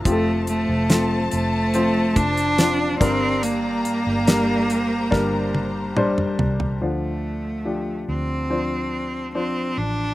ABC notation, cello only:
X:1
M:4/4
L:1/8
Q:1/4=71
K:Dm
V:1 name="Cello"
A, A,2 A,2 D2 C | B,6 z2 | A,3 C3 C D |]